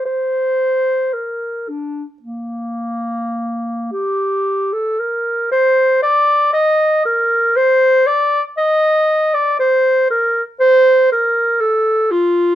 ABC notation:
X:1
M:4/4
L:1/16
Q:1/4=58
K:Bb
V:1 name="Clarinet"
c4 B2 D z B,6 G2- | G A B2 c2 d2 e2 B2 c2 d2 | e3 d c2 B z c2 B2 A2 F2 |]